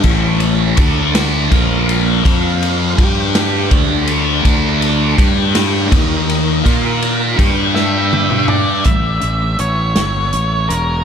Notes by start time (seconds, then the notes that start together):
0.03 A1 A2 E3 A3 E4 C#5 A5 C#6, kick, crash
0.40 ride
0.76 D2 D3 A3 D4 A4 D6, kick, ride
1.15 snare, ride
1.50 A#1 A#2 F3 A#3 F4 A#4 A#5 F6, kick, ride
1.89 ride
2.23 F2 F3 C4 F4 C5 C6, kick, ride
2.62 ride
2.97 G2 G3 D4 G4 G5 D6, kick, ride
3.35 snare, ride
3.71 D2 D3 A3 D4 A4 A5, kick, ride
4.07 ride
4.44 D2 D3 A3 D4, kick, ride
4.82 ride
5.18 G2 G3 D4 G4 G5, kick, ride
5.55 snare, ride
5.91 D#2 D#3 A#3 D#4 A#4 A#5 D#6, kick, ride
6.29 ride
6.63 A#2 A#3 F4 A#4 F6, kick, ride
7.02 ride
7.37 G2 G3 D4 G4 D5 G5 G6, kick, ride
7.75 E5, snare
8.13 high tom
8.30 mid tom
8.48 D5, mid tom
8.84 A1 E5, kick, closed hi-hat
9.21 A1, closed hi-hat
9.59 A1 C#5, closed hi-hat
9.96 G1, snare, closed hi-hat
10.33 A1, closed hi-hat
10.69 E1 A#4, closed hi-hat